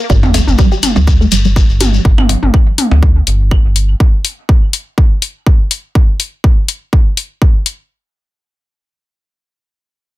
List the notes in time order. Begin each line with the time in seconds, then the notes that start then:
0.10 G1 G3, kick, sub drop, shekere
0.23 high tom, percussion blips, shekere
0.34 A3, open hi-hat, percussion blips, shekere
0.47 G1, high tom, shekere
0.58 G3, kick, shekere
0.72 G4, shekere
0.83 open hi-hat, high tom, claves, shekere
0.96 D2 G3, percussion blips, shekere
1.07 kick, shekere
1.21 A3, shekere
1.32 G1 G3, open hi-hat, shekere
1.45 G3, shekere
1.56 kick, shekere
1.69 G1, shekere
1.81 G4, open hi-hat, high tom, shekere
1.94 shekere
2.05 G1, kick
2.18 high tom, percussion blips, claves
2.29 open hi-hat, percussion blips
2.43 G1, high tom
2.54 kick
2.78 open hi-hat, high tom
2.91 D2, percussion blips
3.03 kick
3.27 G1, open hi-hat
3.51 kick, claves
3.65 G1
3.76 open hi-hat
4.00 kick
4.25 open hi-hat
4.49 kick
4.73 open hi-hat
4.98 kick
5.22 open hi-hat
5.47 kick
5.71 open hi-hat
5.95 kick
6.20 open hi-hat
6.44 kick
6.68 open hi-hat
6.93 kick
7.17 open hi-hat
7.42 kick
7.66 open hi-hat